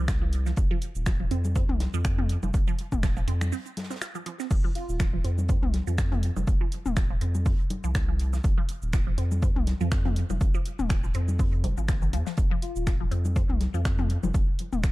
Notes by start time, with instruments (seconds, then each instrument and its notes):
Already playing: sub bass C2
0.08 finger snap, kick, snare, closed hi-hat, shaker
0.22 synth arpeggio sound F3
0.33 closed hi-hat
0.46 synth arpeggio sound F3, snare, shaker
0.56 sub bass F1, kick, closed hi-hat, shaker
0.71 synth arpeggio sound F3
0.81 closed hi-hat
0.95 sub bass D#1, shaker
1.06 synth arpeggio sound F3, finger snap, kick, snare, closed hi-hat, shaker
1.20 synth arpeggio sound F3
1.31 sub bass F2, synth arpeggio sound C4, closed hi-hat
1.45 high conga, shaker
1.56 synth arpeggio sound C4, kick, closed hi-hat, shaker
1.69 sub bass C2, mid tom
1.80 snare, closed hi-hat, high conga
1.94 sub bass F2, synth arpeggio sound F3, shaker
2.04 finger snap, kick, closed hi-hat, shaker
2.18 synth arpeggio sound F3, mid tom
2.29 closed hi-hat
2.43 sub bass F1, synth arpeggio sound F3, high conga, shaker
2.54 sub bass F1, kick, closed hi-hat, shaker
2.68 synth arpeggio sound F3, shaker
2.79 closed hi-hat
2.92 sub bass D#1, kick, mid tom, shaker
3.03 synth arpeggio sound F3, finger snap, kick, snare, closed hi-hat, shaker
3.17 synth arpeggio sound F3, shaker
3.28 sub bass F2, synth arpeggio sound C4, closed hi-hat
3.41 finger snap, high conga, shaker
3.52 synth arpeggio sound C4, open hi-hat, shaker
3.66 closed hi-hat, shaker
3.77 snare, closed hi-hat, high conga
3.83 snare, closed hi-hat
3.91 synth arpeggio sound C4, snare, closed hi-hat, shaker
3.96 snare, closed hi-hat
4.02 synth arpeggio sound F4, finger snap, snare, closed hi-hat, shaker
4.15 synth arpeggio sound F3, shaker
4.26 synth arpeggio sound F3, closed hi-hat
4.40 synth arpeggio sound C4, snare, shaker
4.51 sub bass F1, kick, closed hi-hat, crash, shaker
4.64 synth arpeggio sound F3
4.75 digital synth lead F4, closed hi-hat
4.89 sub bass D#1, digital synth lead F4, shaker
5.00 synth arpeggio sound F3, finger snap, kick, snare, closed hi-hat, shaker
5.13 synth arpeggio sound F3
5.24 sub bass F2, synth arpeggio sound C4, closed hi-hat
5.38 high conga, shaker
5.49 synth arpeggio sound C4, kick, closed hi-hat, shaker
5.63 sub bass C2, mid tom
5.74 snare, closed hi-hat, high conga
5.87 sub bass F2, synth arpeggio sound F3, closed hi-hat, shaker
5.98 finger snap, kick, snare, closed hi-hat, shaker
6.12 synth arpeggio sound F3, closed hi-hat, mid tom
6.23 closed hi-hat
6.36 sub bass F1, synth arpeggio sound F3, high conga, shaker
6.47 sub bass F1, kick, closed hi-hat, shaker
6.61 synth arpeggio sound F3
6.72 closed hi-hat
6.86 sub bass D#1, mid tom, shaker
6.96 synth arpeggio sound F3, finger snap, kick, snare, closed hi-hat, shaker
7.10 synth arpeggio sound F3
7.21 sub bass F2, synth arpeggio sound C4, closed hi-hat
7.35 high conga, shaker
7.46 synth arpeggio sound C4, kick, open hi-hat, shaker
7.60 closed hi-hat
7.70 closed hi-hat, high conga
7.84 sub bass C2, synth arpeggio sound F3, shaker
7.95 finger snap, kick, snare, closed hi-hat, shaker
8.09 synth arpeggio sound F3
8.19 closed hi-hat
8.33 synth arpeggio sound F3, snare, shaker
8.44 sub bass F1, kick, closed hi-hat, shaker
8.58 synth arpeggio sound F3
8.69 closed hi-hat
8.82 sub bass D#1, shaker
8.93 synth arpeggio sound F3, finger snap, kick, snare, closed hi-hat, shaker
9.07 synth arpeggio sound F3
9.18 sub bass F2, synth arpeggio sound C4, closed hi-hat
9.31 high conga, shaker
9.42 synth arpeggio sound C4, kick, closed hi-hat, shaker
9.56 sub bass C2, mid tom
9.67 snare, closed hi-hat, high conga
9.81 sub bass F2, synth arpeggio sound F3, closed hi-hat, shaker
9.92 finger snap, kick, snare, closed hi-hat, shaker
10.05 synth arpeggio sound F3, closed hi-hat, mid tom
10.16 closed hi-hat
10.30 sub bass F1, synth arpeggio sound F3, high conga, shaker
10.41 sub bass F1, kick, closed hi-hat, shaker
10.54 synth arpeggio sound F3, shaker
10.65 closed hi-hat
10.79 sub bass D#1, mid tom, shaker
10.89 synth arpeggio sound F3, finger snap, kick, snare, closed hi-hat, shaker
11.04 synth arpeggio sound F3, shaker
11.14 sub bass F2, synth arpeggio sound C4, closed hi-hat
11.28 high conga, shaker
11.39 synth arpeggio sound C4, kick, open hi-hat, shaker
11.53 closed hi-hat
11.64 sub bass D#1, synth arpeggio sound C3, closed hi-hat, high conga
11.77 sub bass G#1, synth arpeggio sound F3, shaker
11.88 synth arpeggio sound F3, finger snap, kick, snare, closed hi-hat, shaker
12.02 synth arpeggio sound D#3, closed hi-hat, shaker
12.13 sub bass F2, synth arpeggio sound F3, closed hi-hat
12.26 synth arpeggio sound F3, snare, closed hi-hat, shaker
12.37 sub bass F1, kick, closed hi-hat, shaker
12.51 synth arpeggio sound F3
12.62 digital synth lead F4, closed hi-hat
12.76 sub bass D#1, digital synth lead F4, shaker
12.87 synth arpeggio sound F3, finger snap, kick, snare, closed hi-hat, shaker
13.00 synth arpeggio sound F3
13.11 sub bass F2, synth arpeggio sound C4, closed hi-hat
13.25 high conga, shaker
13.36 synth arpeggio sound C4, kick, closed hi-hat, shaker
13.49 sub bass C2, mid tom
13.61 snare, closed hi-hat, high conga
13.74 sub bass F2, synth arpeggio sound F3, closed hi-hat, shaker
13.85 finger snap, kick, snare, closed hi-hat, shaker
13.98 synth arpeggio sound F3, closed hi-hat, mid tom
14.10 closed hi-hat
14.23 sub bass F1, synth arpeggio sound F3, high conga, shaker
14.34 sub bass F1, kick, closed hi-hat, shaker
14.59 closed hi-hat
14.73 sub bass D#1, mid tom, shaker
14.83 finger snap, kick, snare, closed hi-hat, shaker